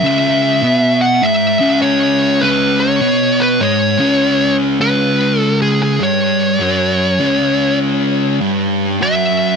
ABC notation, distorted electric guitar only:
X:1
M:4/4
L:1/8
Q:"Swing" 1/4=100
K:C#m
V:1 name="Distorted electric guitar" clef=bass
[C,,C,]2 [B,,B,]2 [G,,G,] [C,,C,]3 | [C,,C,]2 [B,,B,]2 [G,,G,] [C,,C,]3 | [C,,C,]4 [=G,,=G,]2 [F,,F,]2 | [C,,C,]4 [=G,,=G,]2 [F,,F,]2 |]